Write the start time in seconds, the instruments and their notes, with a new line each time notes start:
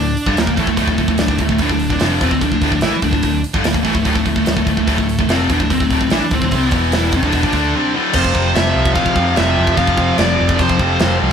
Already playing: picked electric bass D1, distorted electric guitar D2 A2, lead electric guitar D4
0.17 open hi-hat
0.26 picked electric bass G1, distorted electric guitar G2 D3, kick
0.37 picked electric bass D1, distorted electric guitar D2 A2, lead electric guitar A#3, snare, open hi-hat
0.47 picked electric bass D1, distorted electric guitar D2 A2, kick
0.57 picked electric bass A1, distorted electric guitar A2 E3, lead electric guitar A3, kick, open hi-hat
0.66 picked electric bass D1, distorted electric guitar D2 A2, kick
0.71 distorted electric guitar D2 A2
0.77 picked electric bass D1, distorted electric guitar D2 A2, lead electric guitar A3, kick, open hi-hat
0.87 picked electric bass D1, distorted electric guitar D2 A2, kick
0.98 picked electric bass D1, distorted electric guitar D2 A2, kick, open hi-hat
1.08 picked electric bass D1, distorted electric guitar D2 A2, kick
1.18 picked electric bass D1, distorted electric guitar D2 A2, lead electric guitar D4, snare, open hi-hat
1.28 picked electric bass D1, distorted electric guitar D2 A2, kick
1.38 picked electric bass D1, lead electric guitar A3, kick, open hi-hat
1.42 distorted electric guitar D2 A2
1.49 picked electric bass D1, distorted electric guitar D2 A2, kick
1.58 picked electric bass D1, distorted electric guitar D2, lead electric guitar D4, kick, open hi-hat
1.63 distorted electric guitar A2
1.69 picked electric bass D1, distorted electric guitar D2 A2, kick
1.79 open hi-hat
1.90 picked electric bass D1, distorted electric guitar D2 A2, kick
2.00 picked electric bass F1, distorted electric guitar F2 C3 F3, snare, open hi-hat
2.21 picked electric bass E1, distorted electric guitar E2 B2, lead electric guitar C4, kick, open hi-hat
2.31 picked electric bass D1, distorted electric guitar D2 A2, kick
2.41 picked electric bass D1, distorted electric guitar D2 A2, lead electric guitar D4, kick, open hi-hat
2.52 picked electric bass D1, distorted electric guitar D2 A2, kick
2.61 picked electric bass D1, distorted electric guitar D2 A2, kick, open hi-hat
2.72 picked electric bass D1, distorted electric guitar D2 A2, kick
2.81 picked electric bass A1, distorted electric guitar A2 E3, lead electric guitar E4, snare, open hi-hat
2.93 muted picked electric bass stroke, muted distorted electric guitar stroke
3.02 picked electric bass D1, distorted electric guitar D2 A2, lead electric guitar D4, kick, open hi-hat
3.13 picked electric bass D1, distorted electric guitar D2 A2, kick
3.23 picked electric bass D1, distorted electric guitar D2 A2, kick, open hi-hat
3.44 open hi-hat
3.54 picked electric bass G1, distorted electric guitar G2 D3, kick
3.64 picked electric bass D1, distorted electric guitar D2 A2, lead electric guitar A#3, snare, open hi-hat
3.74 picked electric bass D1, distorted electric guitar D2 A2, kick
3.85 picked electric bass A1, distorted electric guitar A2 E3, lead electric guitar A3, kick, open hi-hat
3.95 picked electric bass D1, distorted electric guitar D2 A2, kick
4.05 picked electric bass D1, distorted electric guitar D2 A2, kick, open hi-hat
4.15 picked electric bass D1, distorted electric guitar D2 A2, kick
4.26 picked electric bass D1, distorted electric guitar D2 A2, kick, open hi-hat
4.36 picked electric bass D1, distorted electric guitar D2 A2, kick
4.46 picked electric bass D1, distorted electric guitar D2 A2, snare, open hi-hat
4.57 picked electric bass D1, distorted electric guitar D2 A2, kick
4.67 picked electric bass D1, distorted electric guitar D2 A2, lead electric guitar A3, kick, open hi-hat
4.77 picked electric bass D1, distorted electric guitar D2 A2, kick
4.88 picked electric bass D1, distorted electric guitar D2 A2, kick, open hi-hat
4.98 picked electric bass D1, distorted electric guitar D2 A2, kick
5.09 open hi-hat
5.19 picked electric bass D1, distorted electric guitar D2 A2, kick
5.27 picked electric bass F1, distorted electric guitar F2 C3 F3, lead electric guitar C4, snare, open hi-hat
5.50 picked electric bass E1, distorted electric guitar E2 B2, lead electric guitar D4, kick, open hi-hat
5.60 picked electric bass D1, distorted electric guitar D2 A2, kick
5.70 picked electric bass D1, distorted electric guitar D2 A2, lead electric guitar C4, kick, open hi-hat
5.80 picked electric bass D1, distorted electric guitar D2 A2, kick
5.90 picked electric bass D1, distorted electric guitar D2 A2, kick, open hi-hat
6.01 picked electric bass D1, distorted electric guitar D2 A2, kick
6.10 picked electric bass A1, distorted electric guitar A2 E3, lead electric guitar D4, snare, open hi-hat
6.21 muted picked electric bass stroke, muted distorted electric guitar stroke
6.31 picked electric bass D1, distorted electric guitar D2 A2, lead electric guitar C4, kick, open hi-hat
6.42 picked electric bass D1, distorted electric guitar D2 A2, kick
6.51 picked electric bass C2, kick, open hi-hat
6.55 distorted electric guitar C3 G3 C4, lead electric guitar B3
6.71 picked electric bass E1, distorted electric guitar E2 B2, kick, open hi-hat
6.75 distorted electric guitar E3
6.92 lead electric guitar E4, snare, open hi-hat
7.12 picked electric bass F1, distorted electric guitar F2, kick, open hi-hat
7.17 distorted electric guitar C3, lead electric guitar D4
7.23 picked electric bass D1, distorted electric guitar D2 A2, kick
7.32 picked electric bass E1, distorted electric guitar E2 B2, kick, open hi-hat
7.43 picked electric bass A#1, distorted electric guitar A#2 F3, kick
7.52 picked electric bass D2, distorted electric guitar D3 A3 D4, kick, open hi-hat
7.76 distorted electric guitar C3 G3 C4
7.95 distorted electric guitar D2 A2 D3
8.13 picked electric bass F1, distorted electric guitar F2 C3 F3, lead electric guitar C5, kick, crash, china
8.18 distorted electric guitar F3
8.24 kick
8.33 picked electric bass F1, distorted electric guitar F2 C3 F3, kick
8.53 picked electric bass F1, distorted electric guitar F2 C3 F3, lead electric guitar E5, snare, china
8.74 picked electric bass C2, distorted electric guitar F2 C3 F3
8.86 kick
8.94 picked electric bass A#1, distorted electric guitar F2 C3 F3, lead electric guitar F5, kick, china
9.06 kick
9.16 picked electric bass F2, distorted electric guitar F2 C3 F3, kick
9.20 distorted electric guitar F2
9.36 picked electric bass F1, distorted electric guitar F2 C3 F3, lead electric guitar E5, snare, china
9.40 distorted electric guitar F3
9.57 picked electric bass F1, distorted electric guitar F2 C3 F3
9.67 kick
9.77 picked electric bass F1, distorted electric guitar F2 C3 F3, lead electric guitar F5, kick, china
9.87 kick
9.97 distorted electric guitar F2 C3 F3, kick
10.18 picked electric bass F1, distorted electric guitar F2 C3 F3, lead electric guitar D5, snare, china
10.36 distorted electric guitar F2 C3 F3
10.41 picked electric bass F1
10.49 kick
10.58 picked electric bass F1, distorted electric guitar F2 C3 F3, lead electric guitar C5, kick, china
10.69 kick
10.79 picked electric bass F1, distorted electric guitar F2 C3 F3, kick
10.83 distorted electric guitar F2
10.99 picked electric bass F1, distorted electric guitar F2 C3 F3, snare, china
11.03 distorted electric guitar F3
11.22 picked electric bass C2, distorted electric guitar F2 C3 F3